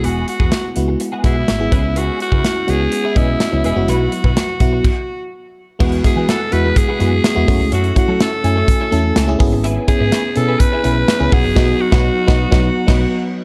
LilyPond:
<<
  \new Staff \with { instrumentName = "Alto saxophone" } { \time 4/4 \key e \major \tempo 4 = 125 fis'8 fis'4 r4 e'4. | fis'8 fis'4 gis'4 e'4 e'8 | fis'2. r4 | r8 gis'8 a'8 b'8 gis'2 |
fis'8 fis'8 a'2~ a'8 r8 | r8 gis'4 a'8 b'4. gis'8~ | gis'8 fis'2. r8 | }
  \new Staff \with { instrumentName = "Clean electric guitar" } { \time 4/4 \key e \major <b fis' gis'>8 r16 <b fis' gis'>16 r4 r16 <b fis' gis'>16 <b fis' gis'>16 r8. <b e' gis'>16 r16 | <b e' gis'>8 r16 <b e' gis'>16 r4 r16 <b e' gis'>16 <b e' gis'>16 r8. <b e' gis'>16 r16 | <e' fis' b'>8 r16 <e' fis' b'>16 r2. | <b fis' gis'>8 r16 <b fis' gis'>16 <b fis' gis'>16 r8 <b fis' gis'>16 r16 <b fis' gis'>16 <b fis' gis'>16 r4 r16 |
<cis' e' a'>8 r16 <cis' e' a'>16 <cis' e' a'>16 r8 <cis' e' a'>16 r16 <cis' e' a'>16 <cis' e' a'>16 r4 r16 | <e' gis' b'>8 r16 <e' gis' b'>16 <e' gis' b'>16 r8 <e' gis' b'>16 r16 <e' gis' b'>16 <e' gis' b'>16 r4 r16 | <dis' fis' b'>8 r16 <dis' fis' b'>8 r16 <dis' fis' b'>8 <dis' fis' b'>8 r16 <dis' fis' b'>8 r8. | }
  \new Staff \with { instrumentName = "FM electric piano" } { \time 4/4 \key e \major <gis b e' fis'>4~ <gis b e' fis'>16 r16 <gis b e' fis'>8. r16 <gis b e' fis'>8. <gis b e' gis'>16 <gis b cis' e'>8~ | <gis b cis' e'>4~ <gis b cis' e'>16 r16 <gis b cis' fis'>8. r16 <gis b cis' dis''>8. <gis b cis' e'>8 <gis b cis' fis'>16 | <fis b e' fis'>4~ <fis b e' fis'>16 r16 <fis b e' fis'>8 r2 | <gis b e' fis'>8 <gis b e' fis'>8. r16 <gis b e' fis'>8. r16 <gis b e' fis'>8. <gis b e' fis'>16 <a cis' e' fis'>8~ |
<a cis' e' fis'>16 r16 <a cis' e' fis'>8. r16 <a cis' e' gis''>8. r16 <a cis' e' a'>8. <a cis' e' gis'>16 <b cis' e' gis'>8~ | <b cis' e' gis'>16 r16 <b cis' e' gis'>8. r16 <b cis' e' gis'>8. r16 <b cis' e' b'>8. <b cis' e' gis'>16 <fis b dis' fis'>8 | <fis b dis' fis'>8 r16 <fis b dis' fis'>8 r16 <fis b dis'>8 <fis b dis'>8 r16 <fis b dis'>8 r8. | }
  \new Staff \with { instrumentName = "Fretless electric bass" } { \clef bass \time 4/4 \key e \major e,,8 r16 e,16 r8 cis,8 r8 b,,8 gis,,8 cis,8~ | cis,8 r16 cis16 r8 cis,8 r8 b,,8 r16 cis,16 e,,16 fis,,16 | b,,8 r16 b,16 r8 b,,8 r2 | e,8 r16 e16 r8 e,8 r8 fis,8 r16 e,16 fis,16 cis,16 |
fis,8 r16 fis16 r8 fis,8 r8 e,8 cis,8 gis,,8~ | gis,,8 r16 gis,16 r8 b,8 r8 b,,8 r16 cis,16 b,,16 fis,,16 | b,,8 r16 b,,8 r16 b,,8 b,,8 r16 b,,8 r8. | }
  \new DrumStaff \with { instrumentName = "Drums" } \drummode { \time 4/4 hh8 hh16 bd16 <hh sn>8 hh8 hh8 <hh bd>8 <hh sn>8 <hh bd>8 | hh8 hh16 bd16 <hh sn>8 hh8 hh8 <hh bd>8 <hh sn>8 hh8 | hh8 hh16 bd16 <hh sn>8 <hh bd>8 <cymc bd>4 r4 | <cymc bd>16 hh16 <hh bd>8 <hh sn>8 hh8 <hh bd>8 hh8 <hh sn>8 <hho bd>8 |
hh16 hh16 <hh bd>8 <hh sn>8 hh8 <hh bd>8 hh8 <hh sn>8 <hho bd>8 | hh8 <hh bd>8 <hh sn>8 hh8 <hh bd>8 hh8 <hh sn>8 <hho bd>8 | <cymc bd sn>8. <bd sn>16 r8 <bd sn>8 <bd sn>8. <cymc bd sn>16 r4 | }
>>